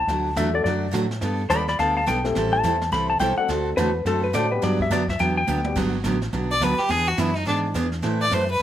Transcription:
Already playing: A5
0.07 D2 D3 F#3 A3 D4 F#4, brush sweep, snare
0.36 E2 D3 F#3 A3 D4 F#4 E5, snare, hi-hat pedal
0.53 F#3 A3 D4 F#4 A4 D5
0.64 F#2 D3 F#3 A3 D4 F#4 D5, brush sweep, snare
0.91 A2 D3 F#3 A3 D4 F#4, snare, hi-hat pedal
1.11 snare
1.21 G2 G3 B3 D4 A4, brush sweep, snare
1.50 D#2 G3 B3 D4 A4 D5 B5, snare, hi-hat pedal
1.68 D5 B5, snare
1.79 D2 G3 B3 D4 A4 F5 A5, brush sweep, snare
1.97 F5 A5
2.06 B1 G3 B3 D4 A4 G5, snare, hi-hat pedal
2.24 A3 C4 E4 G4 A4, snare
2.35 A1 E3 G3 C4 E4 A4, brush sweep, snare
2.53 A5
2.63 E2 E3 G3 C4 E4 A4, snare, hi-hat pedal
2.81 snare
2.92 C2 E3 G3 C4 E4 A4 B5, brush sweep, snare
3.10 A5
3.19 B1 E3 G3 C4 E4 A4 G5, snare, hi-hat pedal
3.38 A3 C4 D4 F#4 A4 F#5, muted fretless electric bass stroke
3.48 D2 D3 A3 C4 F#4 A4, brush sweep, snare
3.77 E2 D3 A3 C4 F#4 A4 B4, snare, hi-hat pedal
4.05 F#2 D3 A3 C4 F#4 A4, brush sweep, snare
4.24 B4
4.33 A2 D3 A3 C4 F#4 A4 D5, snare, hi-hat pedal
4.51 G3 B3 D4 F#4 G4 B4
4.62 G2 D3 F#3 B3 D4 G4 D5, brush sweep, snare
4.80 E5, kick
4.90 F#2 D3 F#3 B3 D4 G4 D5, snare, hi-hat pedal
5.08 E5, kick, snare
5.19 E2 D3 F#3 B3 D4 G4 G5, brush sweep, snare
5.37 G5
5.47 D2 D3 F#3 B3 D4 G4, hi-hat pedal, high tom
5.64 G3 B3 D4 F#4 G4, high tom
5.75 G1 D3 F#3 B3 D4 G4, brush sweep, kick, snare, crash
6.04 A1 D3 F#3 B3 D4 G4, snare, hi-hat pedal
6.22 snare
6.33 B1 D3 F#3 B3 D4 G4, brush sweep, snare
6.51 D5
6.60 D2 D3 F#3 B3 D4 G4 B4, snare, hi-hat pedal
6.79 G4, muted fretless electric bass stroke, snare
6.88 E2 E3 B3 D4 G#4, brush sweep, snare
7.08 F#4
7.17 F#2 E3 B3 D4 E4 G#4, snare, hi-hat pedal
7.35 D#4, snare
7.45 G#2 E3 B3 D4 G#4, brush sweep, snare
7.74 E2 E3 B3 D4 G#4, snare, hi-hat pedal
7.92 snare
8.02 A2 E3 A3 C4 E4 B4, brush sweep, snare
8.22 D5
8.31 F#2 E3 A3 C4 E4 B4 C5, snare, hi-hat pedal
8.51 B4

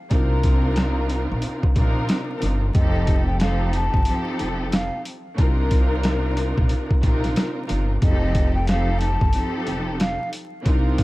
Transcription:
0.09 C2 C3 C4 D4 D#4 F4 A#4, kick, closed hi-hat
0.43 kick, closed hi-hat
0.76 snare, closed hi-hat
1.09 closed hi-hat
1.32 A#1
1.42 closed hi-hat
1.63 kick
1.75 A#1 C3 C4 D4 D#4 F4 A#4, kick, closed hi-hat
2.09 snare, closed hi-hat
2.39 C3 C4 D4 D#4 F4 A#4, closed hi-hat
2.43 G1
2.73 F1 F3 C4 D#4 G4 A4 D#5, kick, closed hi-hat
3.07 kick, closed hi-hat
3.26 G5
3.40 F3 C4 D#4 G4 A4 F5, snare, closed hi-hat
3.73 A5, closed hi-hat
3.94 G1, kick
4.05 F3 C4 D#4 G4 A4, closed hi-hat
4.39 F1, closed hi-hat
4.72 F5, snare, closed hi-hat
5.05 closed hi-hat
5.36 C2 C3 C4 D4 D#4 F4 A#4, kick, closed hi-hat
5.71 kick, closed hi-hat
6.03 snare, closed hi-hat
6.37 closed hi-hat
6.58 A#1, kick
6.69 closed hi-hat
6.91 kick
7.02 A#1 C3 C4 D4 D#4 F4 A#4, kick, closed hi-hat
7.24 snare, closed hi-hat
7.36 snare, closed hi-hat
7.66 C3 C4 D4 D#4 F4 A#4, closed hi-hat
7.70 G1
8.01 F1 F3 C4 D#4 G4 A4 D#5, kick, closed hi-hat
8.35 kick, closed hi-hat
8.55 G5
8.67 F3 C4 D#4 G4 A4 F5, snare, closed hi-hat
9.01 A5, closed hi-hat
9.21 G1, kick
9.33 F3 C4 D#4 G4 A4, closed hi-hat
9.67 F1, closed hi-hat
10.00 F5, snare, closed hi-hat
10.33 closed hi-hat
10.64 C2 C3 C4 D4 D#4 F4 A#4, kick, closed hi-hat
10.98 kick, closed hi-hat

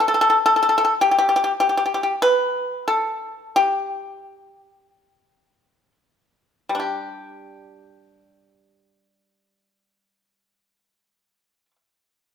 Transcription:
0.00 A4
0.08 A4
0.14 A4
0.21 A4
0.30 A4
0.46 A4
0.56 A4
0.63 A4
0.69 A4
0.78 A4
0.85 A4
1.01 G4
1.11 G4
1.18 G4
1.29 G4
1.36 G4
1.44 G4
1.60 G4
1.69 G4
1.77 G4
1.86 G4
1.94 G4
2.03 G4
2.22 B4
2.88 A4
3.56 G4
6.69 G3
6.75 D4
6.80 G4

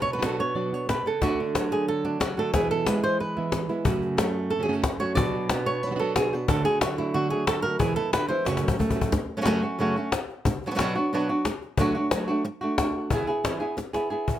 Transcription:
Already playing: B2
0.02 C#5
0.06 cajon slap
0.13 F#3 B3 D4 F#4 B4
0.18 F#3 B3 D4 F#4
0.22 B2 F#3 B3 D4 F#4 A4, cajon slap
0.40 B3 D4 F#4 C#5
0.55 B2 F#3 B3 D4 F#4 D5
0.73 B3 D4 F#4 C#5
0.89 B2 B4, muted nylon-string guitar stroke, cajon slap
1.06 C#3 A4, cajon slap
1.22 D3 A3 D4 F#4, cajon bass, cajon slap
1.40 D4
1.55 D3 F#3 A3 D4 F#4, cajon slap
1.72 G#4
1.88 A4, muted nylon-string guitar stroke
2.05 A3 D4 F#4
2.20 C#3 F#4, cajon slap
2.37 D3 A3 D4 F#4 A4
2.54 E2 B2 E3 G#3 B3 E4 G#4, cajon bass, cajon slap
2.71 A4
2.86 E3 G#3 B3 E4 B4, cajon slap
3.04 C5
3.20 B4, muted nylon-string guitar stroke
3.37 E3 G#3 B3 E4
3.52 cajon slap
3.69 E3 G#3 B3 E4, cajon slap
3.85 F#2 C#3 F#3 A3 C#4 F#4, cajon bass
4.02 cajon slap
4.17 F#3 A3 C#4 F#4, cajon slap
4.50 A4, muted nylon-string guitar stroke
4.59 C#3 F#3 A3 C#4 F#4 G#4
4.64 C#3 F#3 A3 C#4 F#4
4.68 F#2 C#3 F#3 A3 C#4 F#4
4.73 A4
4.84 F#3 A3 C#4 F#4 B4, cajon bass, cajon slap
5.00 F#3 A3 C#4 F#4 C#5
5.15 B2 F#3 B3 D4 F#4 D5, cajon bass
5.49 B3 D4 F#4, cajon slap
5.66 C#5
5.83 F#3 B3 B4, muted nylon-string guitar stroke
5.87 F#3 B3 D4 F#4
5.91 F#3 D4 F#4
5.96 B3 D4 F#4 A4
6.00 B2 F#3 B3 D4 F#4
6.16 F#3 B3 D4 F#4 G#4, cajon slap
6.33 B3 D4 F#4 B4
6.48 D3 A3 D4 F#4 A4, cajon bass
6.65 A3 D4 F#4 G#4
6.81 F#3 F#4, muted nylon-string guitar stroke, cajon slap
6.98 A3 D4 E4 F#4
7.14 D3 A3 D4 F#4
7.30 A3 D4 F#4 G#4
7.47 A4, muted nylon-string guitar stroke, cajon slap
7.62 A3 D4 F#4 A#4
7.79 E2 B2 E3 G#3 B3 E4 G#4, cajon bass
7.96 E3 G#3 B3 E4 A4
8.13 D3 B4, muted nylon-string guitar stroke, cajon slap
8.28 E3 G#3 B3 E4 C5
8.45 F#2 C#3 F#3 A3 C#4 F#4 C#5, cajon slap
8.57 cajon slap
8.63 F#3 A3 C#4 F#4
8.68 cajon bass
8.79 A3, muted nylon-string guitar stroke, cajon bass
8.90 cajon bass
8.95 F#3 A3 C#4 F#4
9.01 cajon bass
9.12 muted nylon-string guitar stroke, cajon bass, cajon slap
9.37 C#3 F#3 A3 C#4 F#4
9.41 C#3 F#3 A3 C#4 F#4
9.45 F#2 C#3 F#3 A3 C#4 F#4, cajon slap
9.62 F#3 A3 C#4 F#4
9.79 F#2 C#3 F#3 A3 C#4 F#4
9.96 F#3 A3 C#4 F#4
10.12 muted nylon-string guitar stroke, cajon slap
10.29 cajon slap
10.45 muted nylon-string guitar stroke, cajon bass
10.62 F#3, cajon slap
10.67 B3 D4 F#4
10.71 F#3 B3 D4 F#4
10.75 F#3 B3 D4 F#4, cajon slap
10.80 B2 F#3 B3 D4 F#4
10.96 B3 D4 F#4
11.13 B2 F#3 B3 D4 F#4
11.29 B3 D4 F#4
11.45 muted nylon-string guitar stroke, cajon slap
11.62 cajon slap
11.77 D3 F#3 A3 D4 F#4, cajon bass
11.95 A3 D4 F#4
12.11 F#3 A3 D4 F#4, cajon slap
12.28 A3 D4 F#4
12.45 muted nylon-string guitar stroke
12.61 A3 D4 F#4
12.78 A3 D4 F#4, cajon bass, cajon slap
13.10 E3 B3 E4 G#4, cajon bass
13.27 B3 E4 G#4, cajon slap
13.44 E3 B3 E4 G#4, cajon slap
13.60 B3 E4 G#4
13.77 muted nylon-string guitar stroke, cajon slap
13.93 B3 E4 G#4, cajon slap
14.10 B3 E4 G#4
14.28 cajon bass

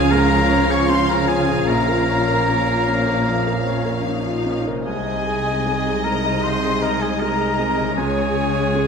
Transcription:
Already playing: C#2 C#3 F3 C#4 F4 G#4 C#5 F5 G#5
0.11 G#2 A#4 A#5
0.31 G#4
0.49 C#5
0.69 G#4 C#5 C#6
0.89 C#4 C5 C6
1.09 F4 A#4 A#5
1.28 C#4 G#4 G#5
1.48 A#2 G#4
1.54 C#4
1.59 F4
1.63 A#4
1.68 A#1 A#2 A#4 A#5
1.88 A#4
2.09 C#5
2.28 A#4
2.48 A#3 C#4
2.67 F4
2.87 C#4
3.06 A#4
3.27 F2
3.47 A#4
3.67 C#4 C#5
3.85 A#4
4.06 C#4 D#4
4.26 F4
4.46 C#4
4.67 C3 A#4
4.73 G#3
4.77 G#4
4.82 C2 G#4 D#5
4.86 C2 C3 G#3 D#4 G#4 G#5
5.06 D#5
5.26 G#4
5.46 D#5
5.67 G#3
5.86 G#4
6.04 G#3 A#4 A#5
6.25 D#5
6.43 C2 C5 C6
6.64 G#4
6.82 A#4 D#5 A#5
7.01 G#4 G#5
7.19 G#3 A#4 A#5
7.40 G#4
7.59 G#3
7.78 C#3 D#5
7.83 G#3
7.88 G#4
7.93 C#2 C#5
7.97 C#2 C#3 C#4 G#4 C#5 G#5
8.18 C#5
8.37 G#4
8.56 C#5
8.75 G#3

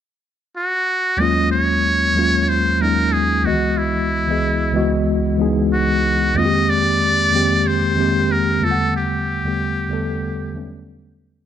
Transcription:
0.56 F#4
1.17 D#2 F#3 G#3 A#3 C#4 D#5
1.22 F4
1.52 C#5
2.14 D#2 F#3 G#3 A#3
2.18 C#4 F4
2.49 C5
2.79 D#2 F#3 G#3 A#3 C#4 A#4
2.83 D#4
3.13 G#4
3.43 C#2 D#3 G#3 B3 F#4 D#5
3.48 E3 F#4
3.78 E4
4.27 C#2 E3 G#3 B3 D#5
4.31 G#4
4.72 C#2 E3 G#3 B3
4.76 F#4 D#5
5.37 C#2 E3 G#3 B3
5.41 D#4 G#4
5.73 F#4
6.34 F2 D#3 G#3 A#3 D#5
6.38 C4 F4
6.45 G4
6.70 D5
7.31 F2 D#3 G#3 A#3 C4
7.36 G4
7.67 C5
7.95 F2 D#3 G#3 A#3
7.99 C4 G4
8.32 A#4
8.60 E2 D3 G3 A3 B3
8.64 F4 A4
8.71 F#5
8.97 G4
9.43 E2 D3 G3 A3 B3
9.48 G4
9.88 E2 D3 G3 A3 B3
9.93 A4
10.52 E2 D3 F#3 A3 B3
10.57 G3 C#4

